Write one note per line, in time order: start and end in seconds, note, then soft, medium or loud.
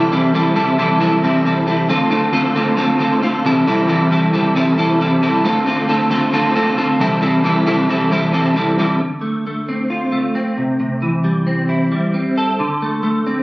0.00 0.10 E3 medium
0.00 0.11 G3 medium
0.00 0.12 C4 loud
0.00 0.11 E4 loud
0.00 0.12 A4 loud
0.11 0.32 C3 medium
0.11 0.33 E3 loud
0.11 0.33 G3 loud
0.11 0.34 C4 medium
0.11 0.34 E4 loud
0.11 0.35 A4 loud
0.33 0.53 C3 medium
0.33 0.54 E3 medium
0.33 0.54 G3 medium
0.33 0.55 C4 medium
0.33 0.55 E4 medium
0.33 0.56 A4 medium
0.54 0.77 C3 medium
0.54 0.77 E3 medium
0.54 0.77 G3 medium
0.54 0.78 C4 loud
0.54 0.78 E4 loud
0.54 0.79 A4 loud
0.78 0.98 C3 medium
0.78 0.99 E3 medium
0.78 0.99 G3 medium
0.78 1.00 C4 medium
0.78 1.00 E4 loud
0.78 1.01 A4 loud
0.99 1.22 C3 medium
0.99 1.22 E3 medium
0.99 1.22 G3 medium
0.99 1.23 C4 loud
0.99 1.23 E4 loud
0.99 1.24 A4 loud
1.23 1.44 C3 medium
1.23 1.44 E3 medium
1.23 1.44 G3 loud
1.23 1.46 C4 medium
1.23 1.45 E4 loud
1.23 1.46 A4 medium
1.45 1.64 C3 medium
1.45 1.65 E3 medium
1.45 1.65 G3 medium
1.45 1.67 C4 medium
1.45 1.66 E4 medium
1.45 1.67 A4 medium
1.66 1.87 C3 medium
1.66 1.87 E3 medium
1.66 1.87 G3 medium
1.66 1.89 C4 medium
1.66 1.88 E4 medium
1.66 1.89 A4 medium
1.89 2.09 D3 medium
1.89 2.10 A3 loud
1.89 2.10 C4 medium
1.89 2.10 F4 loud
1.89 2.11 A4 loud
2.10 2.31 D3 medium
2.10 2.32 A3 medium
2.10 2.33 C4 medium
2.10 2.32 F4 loud
2.10 2.33 A4 medium
2.32 2.54 D3 medium
2.32 2.54 A3 medium
2.32 2.55 C4 medium
2.32 2.55 F4 loud
2.32 2.56 A4 medium
2.55 2.76 D3 medium
2.55 2.76 A3 medium
2.55 2.77 C4 loud
2.55 2.76 F4 medium
2.55 2.78 A4 medium
2.77 2.98 D3 loud
2.77 2.99 A3 loud
2.77 3.00 C4 loud
2.77 2.99 F4 loud
2.77 3.00 A4 loud
2.99 3.20 D3 medium
2.99 3.22 A3 medium
2.99 3.22 C4 medium
2.99 3.22 F4 medium
2.99 3.23 A4 medium
3.21 3.42 D3 medium
3.21 3.45 A3 medium
3.21 3.45 C4 medium
3.21 3.43 F4 medium
3.21 3.46 A4 medium
3.45 3.65 C3 medium
3.45 3.65 E3 medium
3.45 3.66 G3 medium
3.45 3.67 C4 loud
3.45 3.67 E4 medium
3.45 3.67 A4 loud
3.66 3.86 C3 medium
3.66 3.86 E3 loud
3.66 3.87 G3 loud
3.66 3.88 C4 loud
3.66 3.87 E4 loud
3.66 3.89 A4 loud
3.87 4.09 C3 medium
3.87 4.09 E3 loud
3.87 4.10 G3 medium
3.87 4.11 C4 medium
3.87 4.11 E4 medium
3.87 4.12 A4 loud
4.10 4.31 C3 medium
4.10 4.32 E3 medium
4.10 4.32 G3 medium
4.10 4.33 C4 medium
4.10 4.32 E4 loud
4.10 4.33 A4 loud
4.32 4.54 C3 medium
4.32 4.54 E3 medium
4.32 4.55 G3 medium
4.32 4.55 C4 medium
4.32 4.55 E4 medium
4.32 4.56 A4 loud
4.55 4.75 C3 medium
4.55 4.76 E3 loud
4.55 4.76 G3 medium
4.55 4.78 C4 loud
4.55 4.77 E4 loud
4.55 4.79 A4 loud
4.77 4.98 C3 medium
4.77 4.99 E3 medium
4.77 4.99 G3 medium
4.77 5.00 C4 loud
4.77 5.00 E4 loud
4.77 5.01 A4 loud
5.00 5.20 C3 medium
5.00 5.20 E3 medium
5.00 5.21 G3 medium
5.00 5.22 C4 medium
5.00 5.22 E4 medium
5.00 5.22 A4 medium
5.21 5.42 C3 medium
5.21 5.42 E3 medium
5.21 5.43 G3 medium
5.21 5.44 C4 medium
5.21 5.43 E4 medium
5.21 5.45 A4 loud
5.44 5.65 D3 medium
5.44 5.66 A3 loud
5.44 5.66 C4 loud
5.44 5.66 F4 loud
5.44 5.67 A4 loud
5.66 5.87 D3 loud
5.66 5.88 A3 medium
5.66 5.88 C4 medium
5.66 5.87 F4 medium
5.66 5.89 A4 loud
5.88 6.08 D3 medium
5.88 6.10 A3 medium
5.88 6.10 C4 loud
5.88 6.09 F4 medium
5.88 6.11 A4 loud
6.10 6.31 D3 medium
6.10 6.32 A3 medium
6.10 6.33 C4 medium
6.10 6.32 F4 medium
6.10 6.33 A4 medium
6.32 6.53 D3 loud
6.32 6.55 A3 medium
6.32 6.55 C4 medium
6.32 6.55 F4 loud
6.32 6.55 A4 loud
6.55 6.76 D3 medium
6.55 6.77 A3 medium
6.55 6.77 C4 medium
6.55 6.76 F4 loud
6.55 6.78 A4 medium
6.77 6.98 D3 medium
6.77 7.00 A3 medium
6.77 7.00 C4 medium
6.77 6.98 F4 medium
6.77 7.01 A4 medium
6.99 7.19 C3 medium
6.99 7.20 E3 medium
6.99 7.20 G3 loud
6.99 7.21 C4 loud
6.99 7.21 E4 loud
6.99 7.21 A4 loud
7.20 7.42 C3 medium
7.20 7.43 E3 medium
7.20 7.43 G3 medium
7.20 7.43 C4 medium
7.20 7.44 E4 medium
7.20 7.44 A4 loud
7.43 7.65 C3 medium
7.43 7.65 E3 loud
7.43 7.65 G3 medium
7.43 7.65 C4 loud
7.43 7.66 E4 loud
7.43 7.66 A4 loud
7.66 7.88 C3 medium
7.66 7.88 E3 medium
7.66 7.88 G3 medium
7.66 7.88 C4 medium
7.66 7.89 E4 loud
7.66 7.89 A4 loud
7.89 8.09 C3 medium
7.89 8.10 E3 medium
7.89 8.10 G3 medium
7.89 8.11 C4 medium
7.89 8.11 E4 medium
7.89 8.11 A4 medium
8.11 8.31 C3 medium
8.11 8.31 E3 medium
8.11 8.32 G3 medium
8.11 8.32 C4 loud
8.11 8.32 E4 loud
8.11 8.33 A4 medium
8.32 8.53 C3 medium
8.32 8.54 E3 medium
8.32 8.55 G3 medium
8.32 8.55 C4 medium
8.32 8.55 E4 medium
8.32 8.56 A4 medium
8.55 8.76 C3 medium
8.55 8.77 E3 medium
8.55 8.77 G3 medium
8.55 8.78 C4 medium
8.55 8.77 E4 medium
8.55 8.78 A4 medium
8.78 8.99 C3 medium
8.78 8.99 E3 medium
8.78 8.99 G3 medium
8.78 8.99 C4 medium
8.78 8.99 E4 medium
8.78 8.99 A4 medium
9.00 10.12 D3 medium
9.21 9.46 A3 medium
9.47 10.12 A3 medium
9.69 10.35 C4 medium
9.90 10.57 F4 medium
10.12 11.24 A3 medium
10.35 11.46 C4 medium
10.57 10.79 C3 medium
10.80 11.92 C3 medium
11.02 12.14 E3 medium
11.24 11.91 G3 medium
11.47 12.14 C4 medium
11.69 12.59 E4 medium
11.92 12.59 G3 medium
12.14 12.62 C4 medium
12.38 13.43 A4 medium
12.59 13.43 D3 medium
12.82 13.03 A3 medium
13.03 13.43 A3 medium
13.27 13.43 C4 medium